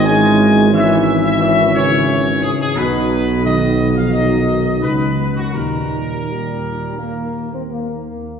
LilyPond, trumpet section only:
\new Staff \with { instrumentName = "Trumpet section" } { \time 4/4 \key ees \mixolydian \tempo 4 = 87 gis''4 e''8. e''16 e''8 cis''4 gis'16 gis'16 | b'4 dis''8. f''16 dis''4 b'8. fis'16 | bes'2. r4 | }